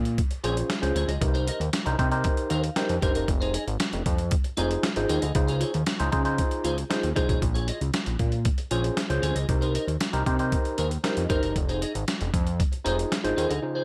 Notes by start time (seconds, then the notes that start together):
Already playing: A#2
0.05 muted clean electric guitar stroke, closed hi-hat
0.18 kick, closed hi-hat
0.31 muted clean electric guitar stroke, closed hi-hat
0.44 A#1 C#4 F4 G#4 C5 C#5, closed hi-hat
0.57 muted clean electric guitar stroke, closed hi-hat
0.70 muted clean electric guitar stroke, snare, closed hi-hat
0.82 C#2 C#4 F4 G#4 C5, muted clean electric guitar stroke, closed hi-hat
0.95 D2 F4 G#4 C#5, closed hi-hat
1.08 C#2 F4 G#4 D#5, closed hi-hat
1.21 C2 D#4 G4 A#4 B4, muted clean electric guitar stroke, kick, closed hi-hat
1.28 C5
1.34 D#4 A#4 C5, closed hi-hat
1.47 D#4 A#4 D#5, closed hi-hat
1.60 D#2, muted clean electric guitar stroke, closed hi-hat
1.73 muted clean electric guitar stroke, snare, closed hi-hat
1.86 C2 D#4 G4 A#4 C5, muted clean electric guitar stroke, closed hi-hat
1.99 C3 D#4 G4 A#4 C5, kick, closed hi-hat
2.11 D#4 G4 A#4 C5, muted clean electric guitar stroke, closed hi-hat
2.24 kick, closed hi-hat
2.37 muted clean electric guitar stroke, closed hi-hat
2.50 D#2 D#4 A#4 C5 F5, closed hi-hat
2.63 muted clean electric guitar stroke, closed hi-hat
2.76 D#4 G4 A#4 C5 G5, muted clean electric guitar stroke, snare, closed hi-hat
2.89 F2, closed hi-hat
3.02 G1 D#4 G4 A#4 C5 A#5, kick, closed hi-hat
3.15 F#1 D#4 A#4 D#5, closed hi-hat
3.28 F1, muted clean electric guitar stroke, kick, closed hi-hat
3.41 D#4 G#4 C5, closed hi-hat
3.53 D#4 G#4 D#5, closed hi-hat
3.67 G#1, muted clean electric guitar stroke, closed hi-hat
3.79 muted clean electric guitar stroke, snare, closed hi-hat
3.92 F1, muted clean electric guitar stroke, closed hi-hat
4.06 F2, kick, closed hi-hat
4.18 muted clean electric guitar stroke, closed hi-hat
4.31 kick, closed hi-hat
4.44 muted clean electric guitar stroke, closed hi-hat
4.57 F1 D#4 F4 G#4 C5, closed hi-hat
4.70 muted clean electric guitar stroke, closed hi-hat
4.83 muted clean electric guitar stroke, snare, closed hi-hat
4.96 G#1 D#4 F4 G#4 C5, muted clean electric guitar stroke, closed hi-hat
5.09 D#2 D#4 G#4 C5, closed hi-hat
5.22 D2 D#4 G#4 D#5, closed hi-hat
5.35 C#2 D#4 F4 G#4 C5, muted clean electric guitar stroke, kick, closed hi-hat
5.47 F4 G#4 C5, closed hi-hat
5.60 F4 G#4 C#5, closed hi-hat
5.73 D#2, muted clean electric guitar stroke, closed hi-hat
5.86 muted clean electric guitar stroke, snare, closed hi-hat
5.99 C#2 D#4 F4 G#4 C5, muted clean electric guitar stroke, closed hi-hat
6.12 C#3 D#4 F4 G#4 C5, kick, closed hi-hat
6.25 D#4 F4 G#4 C5, muted clean electric guitar stroke, closed hi-hat
6.38 kick, closed hi-hat
6.51 muted clean electric guitar stroke, closed hi-hat
6.64 C#2 F4 G#4 C5, closed hi-hat
6.77 muted clean electric guitar stroke, closed hi-hat
6.90 D#4 F4 G#4 C5, snare, closed hi-hat
7.03 D#2, closed hi-hat
7.16 C2 D#4 F4 G#4 C5, kick, closed hi-hat
7.29 B1 F4 G#4 C#5, kick, closed hi-hat
7.42 A#1, muted clean electric guitar stroke, kick, closed hi-hat
7.54 F4 G#4 C#5, closed hi-hat
7.67 F4 G#4 D#5, closed hi-hat
7.81 C#2, muted clean electric guitar stroke, closed hi-hat
7.93 muted clean electric guitar stroke, snare, closed hi-hat
8.06 A#1, muted clean electric guitar stroke, closed hi-hat
8.19 A#2, kick, closed hi-hat
8.32 muted clean electric guitar stroke, closed hi-hat
8.45 kick, closed hi-hat
8.58 muted clean electric guitar stroke, closed hi-hat
8.71 A#1 C#4 F4 G#4 C5 C#5, closed hi-hat
8.84 muted clean electric guitar stroke, closed hi-hat
8.97 muted clean electric guitar stroke, snare, closed hi-hat
9.10 C#2 C#4 F4 G#4 C5, muted clean electric guitar stroke, closed hi-hat
9.22 D2 F4 G#4 C#5, closed hi-hat
9.35 C#2 F4 G#4 D#5, closed hi-hat
9.49 C2 D#4 G4 A#4 C5, muted clean electric guitar stroke, kick, closed hi-hat
9.61 D#4 A#4 C5, closed hi-hat
9.74 D#4 A#4 D#5, closed hi-hat
9.87 D#2, muted clean electric guitar stroke, closed hi-hat
10.00 muted clean electric guitar stroke, snare, closed hi-hat
10.13 C2 D#4 G4 A#4 C5, muted clean electric guitar stroke, closed hi-hat
10.26 C3 D#4 G4 A#4 C5, kick, closed hi-hat
10.39 D#4 G4 A#4 C5, muted clean electric guitar stroke, closed hi-hat
10.52 kick, closed hi-hat
10.65 muted clean electric guitar stroke, closed hi-hat
10.78 D#2 D#4 A#4 C5, closed hi-hat
10.91 muted clean electric guitar stroke, closed hi-hat
11.04 D#4 G4 A#4 C5 D#5, snare, closed hi-hat
11.17 F2, muted clean electric guitar stroke, closed hi-hat
11.29 G1 D#4 G4 A#4 C5 A#5, kick, closed hi-hat
11.42 F#1 D#4 A#4 D#5, closed hi-hat
11.56 F1, muted clean electric guitar stroke, kick, closed hi-hat
11.69 D#4 G#4 C5, closed hi-hat
11.81 D#4 G#4 D#5, closed hi-hat
11.94 G#1, muted clean electric guitar stroke, closed hi-hat
12.07 muted clean electric guitar stroke, snare, closed hi-hat
12.21 F1, muted clean electric guitar stroke, closed hi-hat
12.34 F2, kick, closed hi-hat
12.46 muted clean electric guitar stroke, closed hi-hat
12.60 kick, closed hi-hat
12.72 muted clean electric guitar stroke, closed hi-hat
12.85 F1 D#4 F4 G#4 C5, closed hi-hat
12.98 muted clean electric guitar stroke, closed hi-hat
13.11 muted clean electric guitar stroke, snare, closed hi-hat
13.24 G#1 D#4 F4 G#4 C5, muted clean electric guitar stroke, closed hi-hat
13.37 D#2 D#4 G#4 C5, closed hi-hat
13.49 D2 D#4 G#4 D#5, closed hi-hat
13.62 C#3 D#4 F4 G#4 C5, muted clean electric guitar stroke
13.75 F4 G#4 C5